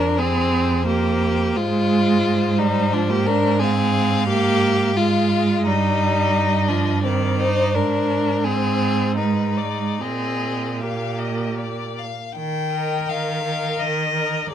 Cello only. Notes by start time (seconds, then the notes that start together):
Already playing: F2
1.57 G#2
5.66 G2
7.74 G#2
10.02 A#2
12.36 D#3
13.09 D#3
13.80 D#3